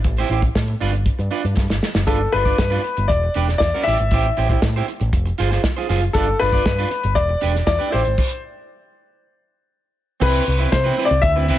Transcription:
0.04 A1, muted clean electric guitar stroke, kick, closed hi-hat
0.17 E4 G4 C5, closed hi-hat
0.29 A1 E4 G4 C5, closed hi-hat
0.42 muted clean electric guitar stroke, kick, closed hi-hat
0.55 A2, kick, snare
0.68 muted clean electric guitar stroke, closed hi-hat
0.80 G1 D4 F4 B4, open hi-hat
0.93 muted clean electric guitar stroke, closed hi-hat
1.06 kick, closed hi-hat
1.19 G2, muted clean electric guitar stroke, closed hi-hat
1.31 D4 F4 B4, closed hi-hat
1.44 G2, muted clean electric guitar stroke, closed hi-hat
1.57 G2, muted clean electric guitar stroke, kick, snare
1.70 G1, muted clean electric guitar stroke, snare
1.83 snare
1.94 F#1, muted clean electric guitar stroke, snare
2.07 G1 D4 F4 A4 B4, kick, closed hi-hat
2.21 muted clean electric guitar stroke
2.32 G1 D4 F4 B4, closed hi-hat
2.45 D4 F4 D5, kick, closed hi-hat
2.58 G2, kick, snare
2.70 D4 F4 B4
2.84 muted clean electric guitar stroke, closed hi-hat
2.97 G1, muted clean electric guitar stroke, closed hi-hat
3.08 E1 D5, muted clean electric guitar stroke, kick, closed hi-hat
3.23 muted clean electric guitar stroke
3.34 E1 D4 G4 B4, closed hi-hat
3.48 muted clean electric guitar stroke, snare, closed hi-hat
3.58 E2 D5, muted clean electric guitar stroke, kick, snare
3.74 D4 G4 B4
3.83 A1 E4 G4 E5, open hi-hat
3.88 D5
3.98 G#1, muted clean electric guitar stroke, closed hi-hat
4.11 A1 E4 G4 C5, kick, closed hi-hat
4.37 A1 E4 G4 C5, closed hi-hat
4.49 E4 G4 C5, kick, closed hi-hat
4.62 A2, muted clean electric guitar stroke, kick, snare
4.76 E4 G4 C5
4.88 muted clean electric guitar stroke, closed hi-hat
5.00 A1, muted clean electric guitar stroke, closed hi-hat
5.13 F1, muted clean electric guitar stroke, kick, closed hi-hat
5.26 muted clean electric guitar stroke, closed hi-hat
5.38 G1 F4 G#4 C5, closed hi-hat
5.51 F4 G#4 C5, snare, closed hi-hat
5.64 muted clean electric guitar stroke, kick, snare
5.77 F4 G#4 C5, closed hi-hat
5.89 F#1 F4 G#4 C5, open hi-hat
6.01 muted clean electric guitar stroke, closed hi-hat
6.13 G1 D4 F4 A4 B4, kick, closed hi-hat
6.28 muted clean electric guitar stroke
6.39 G1 D4 F4 B4, closed hi-hat
6.52 D4 F4 D5, kick, closed hi-hat
6.66 G2, muted clean electric guitar stroke, kick, snare
6.79 D4 F4 B4
6.91 muted clean electric guitar stroke, closed hi-hat
7.03 G1, muted clean electric guitar stroke, closed hi-hat
7.15 E1 D5, muted clean electric guitar stroke, kick, closed hi-hat
7.29 muted clean electric guitar stroke
7.41 E1 D4 G4 B4, closed hi-hat
7.54 muted clean electric guitar stroke, snare, closed hi-hat
7.66 E2 D5, muted clean electric guitar stroke, kick, snare
7.79 D4 G4 B4
7.90 A1 E4 G4 C5 D5, open hi-hat
8.04 G#1, muted clean electric guitar stroke, closed hi-hat
8.18 kick, crash
10.20 C2 C4 E4 B4, kick, crash
10.34 closed hi-hat
10.46 C2, muted clean electric guitar stroke, closed hi-hat
10.59 C4 E4 B4, closed hi-hat
10.72 C3 C5, kick, snare
10.84 C4 E4 B4
10.97 C4 E4 B4, open hi-hat
11.05 D5
11.11 C2, muted clean electric guitar stroke, closed hi-hat
11.22 D2 E5, muted clean electric guitar stroke, kick, closed hi-hat
11.36 C4 E4 B4
11.48 C2 C4 E4 B4, closed hi-hat

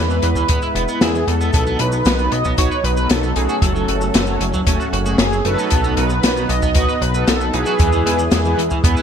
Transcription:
Already playing: E2 G#3 B3 E4 B4
0.10 E3, cabasa
0.22 E2 E3, closed hi-hat
0.35 E2 E3, kick, cabasa
0.48 E2 B3, kick, closed hi-hat, cabasa
0.62 E4, cabasa
0.75 E1 B3, closed hi-hat
0.88 B3, cabasa
1.01 E2 E4 G#4, snare, closed hi-hat, cabasa
1.15 E3, cabasa
1.27 E2 E3 A4, closed hi-hat
1.41 B3, cabasa
1.53 B1 F#3 B3 D#4, kick, closed hi-hat, cabasa
1.67 B3, cabasa
1.79 B1 B3 D#4 F#4 B4, closed hi-hat
1.92 B3, cabasa
2.05 B1 B3, snare, closed hi-hat, cabasa
2.19 B3 D#4 F#4 B4, cabasa
2.32 B1 B3 D#5, closed hi-hat
2.45 B1 B3, kick, cabasa
2.58 B1 B3 D#4 F#4 B4 C#5, kick, closed hi-hat, cabasa
2.71 B4, cabasa
2.84 B1 B4, closed hi-hat
2.97 B3 D#4 F#4 A4 B4, cabasa
3.10 B1 B3 A4, snare, closed hi-hat, cabasa
3.23 B3, cabasa
3.36 B1 A3 C#4 D#4 F#4 G#4 A4, closed hi-hat
3.49 F#4, cabasa
3.62 F#1 F#3 A3 C#4 A4, kick, closed hi-hat, cabasa
3.75 F#3, cabasa
3.88 F#1 A3 C#4 F#4 A4, closed hi-hat
4.01 F#3, cabasa
4.14 F#1 F#3, snare, closed hi-hat, cabasa
4.27 F#3 A3 C#4 F#4 A4, cabasa
4.41 F#1 F#3, closed hi-hat
4.54 F#1 F#3, kick, cabasa
4.66 F#1 A3 C#4 F#4 A4, kick, closed hi-hat, cabasa
4.80 F#4, cabasa
4.93 F#1 F#4, closed hi-hat
5.06 A3 C#4 F#4 G#4, cabasa
5.18 F#1 F#3 G#4, snare, closed hi-hat, cabasa
5.32 F#3, cabasa
5.45 F#1 A3 B3 D#4 F#4 A4 B4, closed hi-hat
5.58 C#4, cabasa
5.70 B1 B3 D#4, kick, closed hi-hat, cabasa
5.84 B3, cabasa
5.97 B1 B3 D#4 F#4 B4, closed hi-hat
6.10 B3, cabasa
6.23 B1 B3, snare, closed hi-hat, cabasa
6.36 B3 D#4 F#4 B4, cabasa
6.49 B1 B3 D#5, closed hi-hat
6.62 B1 B3, kick, cabasa
6.75 B1 B3 D#4 F#4 B4, kick, closed hi-hat, cabasa
6.88 B4, cabasa
7.01 B1 B4, closed hi-hat
7.14 B3 D#4 F#4 A4 B4, cabasa
7.28 B1 B3 A4, snare, closed hi-hat, cabasa
7.41 B3, cabasa
7.53 B1 B3 D#4 E4 G#4 B4, closed hi-hat
7.66 F#4, cabasa
7.79 E2 E3 G#3 E4, kick, closed hi-hat, cabasa
7.92 E3, cabasa
8.06 E2 B3 E4 G#4 B4, closed hi-hat
8.19 E3, cabasa
8.31 E2 E3, snare, closed hi-hat, cabasa
8.45 E3 B3 E4 G#4 B4, cabasa
8.58 E2 E3, closed hi-hat
8.70 E2 E3, kick, cabasa
8.84 E2 B3 E4 G#4 B4, kick, closed hi-hat, cabasa
8.97 E4, cabasa

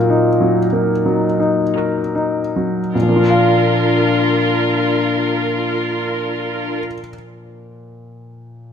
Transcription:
Already playing: A#2 F#3 D#4 F4 F#4 A#4
0.10 D#4
0.40 F#3
0.71 A#3 D#4
1.06 F#3
1.40 D#4
1.75 D#4 F#4 A#4
2.15 D#4
2.56 F#3
2.93 A#2 D4 F4 A#4
3.02 F3
3.09 A#3
3.16 F4
3.24 A#4
3.30 F5

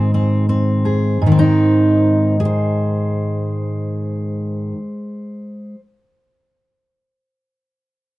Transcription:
Already playing: G#2 D#3 C4 G#4
0.14 C4
0.49 C4
0.85 G#4
1.22 G#2
1.26 D#3
1.32 C4
1.39 D#4
2.40 G#4
2.45 C5

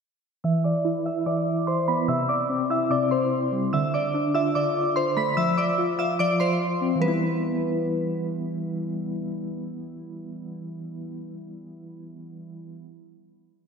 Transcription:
0.44 E3 E5 E6
0.64 E3 D5 D6
0.85 E4
1.06 E5 E6
1.26 E3 D5 D6
1.47 E3
1.67 C5 C6
1.88 B3 B5 B6
2.08 C3 E5 E6
2.29 C3 D5 D6
2.50 C4
2.70 E4 E5 E6
2.90 C3 D5 D6
3.11 C3 C5 C6
3.52 G3
3.73 D3 E5 E6
3.93 D3 D5 D6
4.14 D4
4.34 F4 E5 E6
4.55 D3 D5 D6
4.76 D3
4.96 C5 C6
5.17 A3 B5 B6
5.37 F3 E5 E6
5.57 F3 D5 D6
5.78 F4
5.99 E5 F5 E6
6.19 F3 D5 D6
6.40 F3 C5 C6
6.81 C4
6.96 E3
7.00 G3 B4
7.04 B3 E4

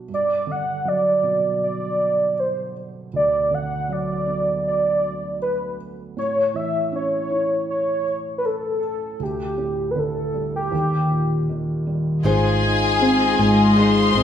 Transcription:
Already playing: F#4
0.09 G2
0.14 D5
0.47 D3
0.51 F#5
0.85 F#3 D5
1.23 B2
1.63 D5
2.39 C5
3.13 D2 D5
3.51 D3 F#5
3.89 F#3 D5
4.27 B3
4.67 D5
5.42 B4
6.17 A2 C#5
6.54 E3 E5
6.92 C#4 C#5
7.30 E4
7.70 C#5
8.38 B4
8.45 A4
9.20 D2 G4
9.58 A2
9.91 B4
9.96 D3 A4
10.34 G3
10.56 G4
10.72 D#2
11.11 A#2
11.49 D#3
11.87 G3
12.23 G#1 G#3 D#4 F4 G#4 C5 D#5 F5 G#5 C6
12.63 D#4
13.00 G#3 C4
13.37 G#1 G#3 D#4 F4 C5
13.75 G#3 D#4 F4 C5 C6
14.12 G#1 D#4 F4 C5
14.17 C4

